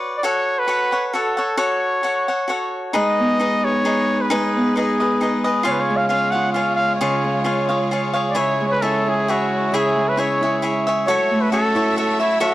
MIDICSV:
0, 0, Header, 1, 5, 480
1, 0, Start_track
1, 0, Key_signature, 3, "minor"
1, 0, Tempo, 451128
1, 245, Time_signature, 3, 2, 24, 8
1, 13346, End_track
2, 0, Start_track
2, 0, Title_t, "Trumpet"
2, 0, Program_c, 0, 56
2, 184, Note_on_c, 0, 74, 78
2, 260, Note_on_c, 0, 73, 109
2, 276, Note_off_c, 0, 74, 0
2, 627, Note_on_c, 0, 71, 111
2, 643, Note_off_c, 0, 73, 0
2, 1138, Note_off_c, 0, 71, 0
2, 1138, Note_on_c, 0, 71, 64
2, 1213, Note_on_c, 0, 69, 85
2, 1229, Note_off_c, 0, 71, 0
2, 1686, Note_on_c, 0, 73, 90
2, 1702, Note_off_c, 0, 69, 0
2, 2910, Note_off_c, 0, 73, 0
2, 3138, Note_on_c, 0, 75, 101
2, 3877, Note_on_c, 0, 73, 98
2, 3893, Note_off_c, 0, 75, 0
2, 4483, Note_on_c, 0, 71, 75
2, 4499, Note_off_c, 0, 73, 0
2, 4584, Note_on_c, 0, 68, 72
2, 4600, Note_off_c, 0, 71, 0
2, 5063, Note_off_c, 0, 68, 0
2, 5078, Note_on_c, 0, 68, 66
2, 5759, Note_off_c, 0, 68, 0
2, 6017, Note_on_c, 0, 73, 75
2, 6079, Note_on_c, 0, 71, 65
2, 6095, Note_off_c, 0, 73, 0
2, 6172, Note_on_c, 0, 73, 86
2, 6188, Note_off_c, 0, 71, 0
2, 6349, Note_on_c, 0, 77, 89
2, 6365, Note_off_c, 0, 73, 0
2, 6470, Note_off_c, 0, 77, 0
2, 6476, Note_on_c, 0, 77, 98
2, 6710, Note_on_c, 0, 78, 96
2, 6726, Note_off_c, 0, 77, 0
2, 6938, Note_off_c, 0, 78, 0
2, 6944, Note_on_c, 0, 77, 84
2, 7180, Note_off_c, 0, 77, 0
2, 7187, Note_on_c, 0, 77, 103
2, 7393, Note_off_c, 0, 77, 0
2, 7400, Note_on_c, 0, 73, 70
2, 8345, Note_off_c, 0, 73, 0
2, 8830, Note_on_c, 0, 74, 69
2, 8907, Note_on_c, 0, 73, 92
2, 8923, Note_off_c, 0, 74, 0
2, 9231, Note_off_c, 0, 73, 0
2, 9237, Note_on_c, 0, 73, 54
2, 9273, Note_on_c, 0, 71, 97
2, 9289, Note_off_c, 0, 73, 0
2, 9382, Note_on_c, 0, 69, 88
2, 9398, Note_off_c, 0, 71, 0
2, 9668, Note_on_c, 0, 68, 89
2, 9684, Note_off_c, 0, 69, 0
2, 9894, Note_on_c, 0, 66, 82
2, 9910, Note_off_c, 0, 68, 0
2, 10372, Note_on_c, 0, 68, 80
2, 10388, Note_off_c, 0, 66, 0
2, 10730, Note_on_c, 0, 71, 92
2, 10746, Note_off_c, 0, 68, 0
2, 10845, Note_on_c, 0, 73, 83
2, 10861, Note_off_c, 0, 71, 0
2, 11313, Note_off_c, 0, 73, 0
2, 11776, Note_on_c, 0, 73, 98
2, 12144, Note_on_c, 0, 71, 88
2, 12160, Note_off_c, 0, 73, 0
2, 12252, Note_off_c, 0, 71, 0
2, 12258, Note_on_c, 0, 69, 100
2, 12698, Note_off_c, 0, 69, 0
2, 12741, Note_on_c, 0, 69, 82
2, 12970, Note_off_c, 0, 69, 0
2, 12984, Note_on_c, 0, 64, 88
2, 13192, Note_off_c, 0, 64, 0
2, 13206, Note_on_c, 0, 66, 90
2, 13346, Note_off_c, 0, 66, 0
2, 13346, End_track
3, 0, Start_track
3, 0, Title_t, "Cavaquinho"
3, 0, Program_c, 1, 24
3, 0, Note_on_c, 1, 66, 46
3, 0, Note_on_c, 1, 71, 61
3, 0, Note_on_c, 1, 73, 61
3, 0, Note_on_c, 1, 74, 53
3, 242, Note_off_c, 1, 66, 0
3, 242, Note_off_c, 1, 71, 0
3, 246, Note_off_c, 1, 74, 0
3, 246, Note_on_c, 1, 66, 71
3, 252, Note_off_c, 1, 73, 0
3, 254, Note_on_c, 1, 73, 81
3, 257, Note_on_c, 1, 69, 92
3, 264, Note_on_c, 1, 78, 91
3, 706, Note_off_c, 1, 66, 0
3, 708, Note_off_c, 1, 69, 0
3, 711, Note_off_c, 1, 73, 0
3, 718, Note_on_c, 1, 66, 51
3, 721, Note_off_c, 1, 78, 0
3, 721, Note_on_c, 1, 69, 57
3, 724, Note_on_c, 1, 73, 62
3, 734, Note_on_c, 1, 78, 69
3, 968, Note_off_c, 1, 78, 0
3, 973, Note_off_c, 1, 73, 0
3, 974, Note_off_c, 1, 66, 0
3, 975, Note_off_c, 1, 69, 0
3, 981, Note_on_c, 1, 78, 51
3, 986, Note_on_c, 1, 73, 49
3, 993, Note_on_c, 1, 69, 42
3, 1203, Note_off_c, 1, 69, 0
3, 1205, Note_off_c, 1, 78, 0
3, 1207, Note_on_c, 1, 66, 60
3, 1208, Note_off_c, 1, 73, 0
3, 1216, Note_on_c, 1, 69, 51
3, 1222, Note_on_c, 1, 78, 64
3, 1223, Note_on_c, 1, 73, 63
3, 1445, Note_off_c, 1, 78, 0
3, 1457, Note_on_c, 1, 78, 57
3, 1459, Note_off_c, 1, 73, 0
3, 1460, Note_off_c, 1, 66, 0
3, 1464, Note_off_c, 1, 69, 0
3, 1472, Note_on_c, 1, 73, 47
3, 1476, Note_on_c, 1, 69, 48
3, 1663, Note_off_c, 1, 69, 0
3, 1663, Note_off_c, 1, 78, 0
3, 1666, Note_off_c, 1, 73, 0
3, 1675, Note_on_c, 1, 78, 84
3, 1676, Note_on_c, 1, 66, 76
3, 1676, Note_on_c, 1, 69, 84
3, 1679, Note_on_c, 1, 73, 86
3, 2147, Note_off_c, 1, 66, 0
3, 2151, Note_off_c, 1, 69, 0
3, 2160, Note_on_c, 1, 66, 53
3, 2161, Note_off_c, 1, 78, 0
3, 2162, Note_off_c, 1, 73, 0
3, 2164, Note_on_c, 1, 69, 51
3, 2174, Note_on_c, 1, 73, 65
3, 2176, Note_on_c, 1, 78, 65
3, 2415, Note_off_c, 1, 78, 0
3, 2418, Note_off_c, 1, 66, 0
3, 2418, Note_off_c, 1, 73, 0
3, 2420, Note_off_c, 1, 69, 0
3, 2427, Note_on_c, 1, 78, 45
3, 2431, Note_on_c, 1, 73, 46
3, 2444, Note_on_c, 1, 69, 42
3, 2635, Note_on_c, 1, 66, 49
3, 2636, Note_off_c, 1, 69, 0
3, 2642, Note_off_c, 1, 73, 0
3, 2646, Note_off_c, 1, 78, 0
3, 2649, Note_on_c, 1, 69, 56
3, 2655, Note_on_c, 1, 73, 60
3, 2659, Note_on_c, 1, 78, 59
3, 3116, Note_off_c, 1, 66, 0
3, 3120, Note_on_c, 1, 63, 78
3, 3121, Note_off_c, 1, 69, 0
3, 3122, Note_off_c, 1, 73, 0
3, 3125, Note_on_c, 1, 68, 78
3, 3126, Note_on_c, 1, 71, 84
3, 3131, Note_off_c, 1, 78, 0
3, 3136, Note_on_c, 1, 75, 89
3, 3598, Note_off_c, 1, 63, 0
3, 3606, Note_off_c, 1, 71, 0
3, 3611, Note_on_c, 1, 63, 57
3, 3614, Note_off_c, 1, 68, 0
3, 3614, Note_off_c, 1, 75, 0
3, 3618, Note_on_c, 1, 68, 49
3, 3619, Note_on_c, 1, 71, 52
3, 3627, Note_on_c, 1, 75, 64
3, 4083, Note_off_c, 1, 63, 0
3, 4087, Note_off_c, 1, 71, 0
3, 4091, Note_off_c, 1, 68, 0
3, 4094, Note_off_c, 1, 75, 0
3, 4096, Note_on_c, 1, 63, 60
3, 4096, Note_on_c, 1, 68, 56
3, 4100, Note_on_c, 1, 71, 53
3, 4106, Note_on_c, 1, 75, 52
3, 4563, Note_off_c, 1, 63, 0
3, 4572, Note_off_c, 1, 68, 0
3, 4575, Note_off_c, 1, 71, 0
3, 4576, Note_on_c, 1, 63, 89
3, 4576, Note_on_c, 1, 68, 90
3, 4579, Note_off_c, 1, 75, 0
3, 4587, Note_on_c, 1, 71, 98
3, 4592, Note_on_c, 1, 75, 90
3, 5048, Note_off_c, 1, 63, 0
3, 5061, Note_on_c, 1, 63, 54
3, 5064, Note_off_c, 1, 71, 0
3, 5064, Note_off_c, 1, 75, 0
3, 5070, Note_off_c, 1, 68, 0
3, 5075, Note_on_c, 1, 68, 56
3, 5076, Note_on_c, 1, 71, 67
3, 5077, Note_on_c, 1, 75, 64
3, 5307, Note_off_c, 1, 75, 0
3, 5313, Note_off_c, 1, 71, 0
3, 5314, Note_off_c, 1, 63, 0
3, 5320, Note_on_c, 1, 75, 51
3, 5321, Note_off_c, 1, 68, 0
3, 5326, Note_on_c, 1, 71, 44
3, 5337, Note_on_c, 1, 68, 38
3, 5533, Note_off_c, 1, 68, 0
3, 5541, Note_on_c, 1, 63, 56
3, 5542, Note_off_c, 1, 71, 0
3, 5543, Note_off_c, 1, 75, 0
3, 5546, Note_on_c, 1, 68, 57
3, 5555, Note_on_c, 1, 71, 49
3, 5566, Note_on_c, 1, 75, 62
3, 5778, Note_off_c, 1, 75, 0
3, 5782, Note_off_c, 1, 71, 0
3, 5791, Note_on_c, 1, 75, 60
3, 5793, Note_off_c, 1, 68, 0
3, 5794, Note_off_c, 1, 63, 0
3, 5794, Note_on_c, 1, 71, 58
3, 5805, Note_on_c, 1, 68, 51
3, 5994, Note_off_c, 1, 68, 0
3, 5994, Note_on_c, 1, 65, 86
3, 6006, Note_off_c, 1, 75, 0
3, 6007, Note_off_c, 1, 71, 0
3, 6007, Note_on_c, 1, 68, 91
3, 6010, Note_on_c, 1, 77, 105
3, 6011, Note_on_c, 1, 73, 80
3, 6468, Note_off_c, 1, 65, 0
3, 6480, Note_on_c, 1, 65, 55
3, 6482, Note_off_c, 1, 77, 0
3, 6486, Note_off_c, 1, 68, 0
3, 6490, Note_on_c, 1, 68, 58
3, 6491, Note_off_c, 1, 73, 0
3, 6495, Note_on_c, 1, 73, 56
3, 6495, Note_on_c, 1, 77, 62
3, 6711, Note_off_c, 1, 77, 0
3, 6724, Note_on_c, 1, 77, 44
3, 6725, Note_off_c, 1, 73, 0
3, 6737, Note_on_c, 1, 73, 43
3, 6738, Note_off_c, 1, 65, 0
3, 6740, Note_off_c, 1, 68, 0
3, 6753, Note_on_c, 1, 68, 40
3, 6957, Note_off_c, 1, 77, 0
3, 6961, Note_on_c, 1, 65, 53
3, 6962, Note_off_c, 1, 68, 0
3, 6964, Note_off_c, 1, 73, 0
3, 6975, Note_on_c, 1, 68, 62
3, 6980, Note_on_c, 1, 73, 51
3, 6982, Note_on_c, 1, 77, 53
3, 7443, Note_off_c, 1, 65, 0
3, 7448, Note_off_c, 1, 77, 0
3, 7452, Note_off_c, 1, 68, 0
3, 7456, Note_on_c, 1, 68, 84
3, 7457, Note_off_c, 1, 73, 0
3, 7460, Note_on_c, 1, 77, 80
3, 7461, Note_on_c, 1, 65, 82
3, 7461, Note_on_c, 1, 73, 92
3, 7907, Note_off_c, 1, 65, 0
3, 7919, Note_off_c, 1, 68, 0
3, 7920, Note_on_c, 1, 65, 52
3, 7923, Note_on_c, 1, 68, 58
3, 7924, Note_off_c, 1, 77, 0
3, 7926, Note_off_c, 1, 73, 0
3, 7931, Note_on_c, 1, 73, 53
3, 7937, Note_on_c, 1, 77, 58
3, 8165, Note_off_c, 1, 77, 0
3, 8174, Note_off_c, 1, 73, 0
3, 8178, Note_off_c, 1, 65, 0
3, 8178, Note_on_c, 1, 77, 48
3, 8180, Note_off_c, 1, 68, 0
3, 8187, Note_on_c, 1, 73, 43
3, 8195, Note_on_c, 1, 68, 37
3, 8410, Note_off_c, 1, 77, 0
3, 8412, Note_off_c, 1, 68, 0
3, 8414, Note_off_c, 1, 73, 0
3, 8418, Note_on_c, 1, 65, 55
3, 8424, Note_on_c, 1, 68, 56
3, 8436, Note_on_c, 1, 77, 59
3, 8437, Note_on_c, 1, 73, 54
3, 8643, Note_off_c, 1, 77, 0
3, 8649, Note_off_c, 1, 73, 0
3, 8655, Note_on_c, 1, 77, 53
3, 8661, Note_on_c, 1, 73, 45
3, 8664, Note_off_c, 1, 68, 0
3, 8674, Note_off_c, 1, 65, 0
3, 8677, Note_on_c, 1, 68, 46
3, 8872, Note_off_c, 1, 68, 0
3, 8879, Note_off_c, 1, 73, 0
3, 8881, Note_on_c, 1, 64, 80
3, 8885, Note_on_c, 1, 68, 78
3, 8888, Note_off_c, 1, 77, 0
3, 8892, Note_on_c, 1, 73, 87
3, 8892, Note_on_c, 1, 76, 75
3, 9375, Note_off_c, 1, 68, 0
3, 9382, Note_off_c, 1, 64, 0
3, 9385, Note_off_c, 1, 73, 0
3, 9386, Note_on_c, 1, 64, 60
3, 9388, Note_on_c, 1, 68, 56
3, 9389, Note_on_c, 1, 73, 65
3, 9398, Note_off_c, 1, 76, 0
3, 9402, Note_on_c, 1, 76, 57
3, 9870, Note_off_c, 1, 68, 0
3, 9873, Note_off_c, 1, 64, 0
3, 9877, Note_on_c, 1, 64, 61
3, 9885, Note_off_c, 1, 73, 0
3, 9888, Note_on_c, 1, 68, 63
3, 9889, Note_on_c, 1, 73, 56
3, 9892, Note_off_c, 1, 76, 0
3, 9896, Note_on_c, 1, 76, 57
3, 10352, Note_off_c, 1, 68, 0
3, 10355, Note_off_c, 1, 64, 0
3, 10359, Note_on_c, 1, 64, 81
3, 10362, Note_off_c, 1, 73, 0
3, 10365, Note_on_c, 1, 68, 83
3, 10366, Note_on_c, 1, 73, 80
3, 10367, Note_off_c, 1, 76, 0
3, 10371, Note_on_c, 1, 76, 88
3, 10820, Note_off_c, 1, 64, 0
3, 10821, Note_off_c, 1, 68, 0
3, 10825, Note_on_c, 1, 64, 56
3, 10831, Note_off_c, 1, 73, 0
3, 10834, Note_on_c, 1, 68, 51
3, 10835, Note_on_c, 1, 73, 62
3, 10844, Note_off_c, 1, 76, 0
3, 10848, Note_on_c, 1, 76, 70
3, 11079, Note_off_c, 1, 64, 0
3, 11080, Note_off_c, 1, 76, 0
3, 11084, Note_off_c, 1, 68, 0
3, 11084, Note_off_c, 1, 73, 0
3, 11092, Note_on_c, 1, 76, 50
3, 11100, Note_on_c, 1, 73, 41
3, 11108, Note_on_c, 1, 68, 44
3, 11295, Note_off_c, 1, 68, 0
3, 11302, Note_off_c, 1, 73, 0
3, 11302, Note_on_c, 1, 64, 53
3, 11308, Note_on_c, 1, 68, 62
3, 11311, Note_off_c, 1, 76, 0
3, 11315, Note_on_c, 1, 73, 68
3, 11323, Note_on_c, 1, 76, 58
3, 11550, Note_off_c, 1, 76, 0
3, 11555, Note_off_c, 1, 64, 0
3, 11558, Note_off_c, 1, 68, 0
3, 11561, Note_off_c, 1, 73, 0
3, 11563, Note_on_c, 1, 76, 64
3, 11576, Note_on_c, 1, 73, 57
3, 11582, Note_on_c, 1, 68, 45
3, 11784, Note_off_c, 1, 76, 0
3, 11787, Note_off_c, 1, 68, 0
3, 11788, Note_off_c, 1, 73, 0
3, 11790, Note_on_c, 1, 66, 87
3, 11792, Note_on_c, 1, 69, 86
3, 11800, Note_on_c, 1, 73, 92
3, 11810, Note_on_c, 1, 76, 99
3, 12251, Note_off_c, 1, 69, 0
3, 12254, Note_off_c, 1, 66, 0
3, 12258, Note_on_c, 1, 66, 66
3, 12264, Note_on_c, 1, 69, 64
3, 12266, Note_off_c, 1, 73, 0
3, 12266, Note_off_c, 1, 76, 0
3, 12270, Note_on_c, 1, 73, 55
3, 12278, Note_on_c, 1, 76, 64
3, 12495, Note_off_c, 1, 76, 0
3, 12499, Note_off_c, 1, 73, 0
3, 12507, Note_on_c, 1, 76, 53
3, 12508, Note_off_c, 1, 66, 0
3, 12511, Note_off_c, 1, 69, 0
3, 12512, Note_on_c, 1, 73, 47
3, 12524, Note_on_c, 1, 69, 41
3, 12727, Note_off_c, 1, 69, 0
3, 12730, Note_off_c, 1, 76, 0
3, 12730, Note_on_c, 1, 66, 45
3, 12733, Note_off_c, 1, 73, 0
3, 12739, Note_on_c, 1, 69, 50
3, 12744, Note_on_c, 1, 73, 61
3, 12745, Note_on_c, 1, 76, 69
3, 12964, Note_off_c, 1, 76, 0
3, 12975, Note_off_c, 1, 73, 0
3, 12977, Note_off_c, 1, 69, 0
3, 12977, Note_on_c, 1, 76, 48
3, 12982, Note_off_c, 1, 66, 0
3, 12988, Note_on_c, 1, 73, 49
3, 12990, Note_on_c, 1, 69, 38
3, 13186, Note_off_c, 1, 69, 0
3, 13191, Note_off_c, 1, 73, 0
3, 13191, Note_off_c, 1, 76, 0
3, 13197, Note_on_c, 1, 66, 78
3, 13199, Note_on_c, 1, 69, 77
3, 13204, Note_on_c, 1, 73, 80
3, 13204, Note_on_c, 1, 76, 97
3, 13346, Note_off_c, 1, 66, 0
3, 13346, Note_off_c, 1, 69, 0
3, 13346, Note_off_c, 1, 73, 0
3, 13346, Note_off_c, 1, 76, 0
3, 13346, End_track
4, 0, Start_track
4, 0, Title_t, "Violin section"
4, 0, Program_c, 2, 48
4, 3139, Note_on_c, 2, 56, 61
4, 3140, Note_on_c, 2, 63, 65
4, 3152, Note_on_c, 2, 71, 85
4, 5991, Note_off_c, 2, 63, 0
4, 5997, Note_off_c, 2, 71, 0
4, 6028, Note_on_c, 2, 73, 78
4, 6041, Note_on_c, 2, 65, 69
4, 8884, Note_off_c, 2, 65, 0
4, 8903, Note_on_c, 2, 64, 63
4, 11739, Note_off_c, 2, 56, 0
4, 11742, Note_off_c, 2, 73, 0
4, 11752, Note_off_c, 2, 64, 0
4, 11756, Note_on_c, 2, 66, 71
4, 11756, Note_on_c, 2, 76, 91
4, 11759, Note_on_c, 2, 57, 78
4, 13346, Note_off_c, 2, 57, 0
4, 13346, Note_off_c, 2, 66, 0
4, 13346, Note_off_c, 2, 76, 0
4, 13346, End_track
5, 0, Start_track
5, 0, Title_t, "Harp"
5, 0, Program_c, 3, 46
5, 3143, Note_on_c, 3, 56, 73
5, 3402, Note_on_c, 3, 59, 60
5, 3877, Note_on_c, 3, 68, 81
5, 4588, Note_off_c, 3, 56, 0
5, 4601, Note_on_c, 3, 56, 83
5, 4854, Note_off_c, 3, 59, 0
5, 4858, Note_on_c, 3, 59, 56
5, 5076, Note_on_c, 3, 63, 62
5, 5328, Note_off_c, 3, 68, 0
5, 5332, Note_on_c, 3, 68, 94
5, 6024, Note_on_c, 3, 49, 74
5, 6072, Note_off_c, 3, 56, 0
5, 6279, Note_on_c, 3, 56, 70
5, 6501, Note_on_c, 3, 61, 64
5, 6754, Note_on_c, 3, 65, 74
5, 7442, Note_off_c, 3, 49, 0
5, 7455, Note_on_c, 3, 49, 86
5, 7698, Note_off_c, 3, 56, 0
5, 7711, Note_on_c, 3, 56, 65
5, 7752, Note_off_c, 3, 68, 0
5, 7926, Note_off_c, 3, 61, 0
5, 7931, Note_on_c, 3, 61, 60
5, 7953, Note_off_c, 3, 63, 0
5, 8162, Note_off_c, 3, 59, 0
5, 8178, Note_off_c, 3, 65, 0
5, 8183, Note_on_c, 3, 65, 79
5, 8888, Note_off_c, 3, 49, 0
5, 8900, Note_on_c, 3, 49, 62
5, 8955, Note_off_c, 3, 56, 0
5, 9163, Note_on_c, 3, 56, 60
5, 9387, Note_off_c, 3, 61, 0
5, 9391, Note_on_c, 3, 61, 60
5, 9645, Note_on_c, 3, 64, 69
5, 9709, Note_off_c, 3, 65, 0
5, 10327, Note_off_c, 3, 49, 0
5, 10340, Note_on_c, 3, 49, 71
5, 10585, Note_off_c, 3, 56, 0
5, 10598, Note_on_c, 3, 56, 55
5, 10806, Note_off_c, 3, 61, 0
5, 10811, Note_on_c, 3, 61, 56
5, 11069, Note_off_c, 3, 64, 0
5, 11074, Note_on_c, 3, 64, 78
5, 11780, Note_on_c, 3, 54, 84
5, 11834, Note_off_c, 3, 49, 0
5, 11834, Note_off_c, 3, 56, 0
5, 12029, Note_on_c, 3, 57, 61
5, 12247, Note_off_c, 3, 61, 0
5, 12251, Note_on_c, 3, 61, 57
5, 12494, Note_off_c, 3, 64, 0
5, 12498, Note_on_c, 3, 64, 96
5, 13192, Note_off_c, 3, 54, 0
5, 13205, Note_on_c, 3, 54, 74
5, 13346, Note_off_c, 3, 54, 0
5, 13346, Note_off_c, 3, 57, 0
5, 13346, Note_off_c, 3, 61, 0
5, 13346, Note_off_c, 3, 64, 0
5, 13346, End_track
0, 0, End_of_file